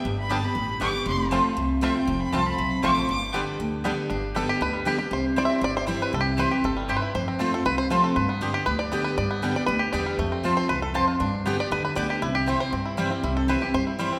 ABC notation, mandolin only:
X:1
M:4/4
L:1/8
Q:1/4=236
K:Gmix
V:1 name="Mandolin"
z2 [B,Gdg] z3 [B,Gdg] z | z2 [CFca] z3 [CFca] z | z2 [CFca] z3 [CFca] z | z2 [B,Gdg] z3 [B,Gdg] z |
z2 [B,Gdg] z3 [B,Gdg] z | z2 [CEcg] z3 [CEcg] z | z2 [CEcg] z3 [CEcg] z | z2 [CFca] z3 [CFca] z |
z2 [B,Gdg] z3 [B,Gdg] z | z2 [B,Gdg] z3 [B,Gdg] z | z2 [CFca] z3 [CFca] z | z2 [B,Gdg] z3 [B,Gdg] z |
z2 [CEcg] z3 [CEcg] z | z2 [CEcg] z3 [CEcg] z |]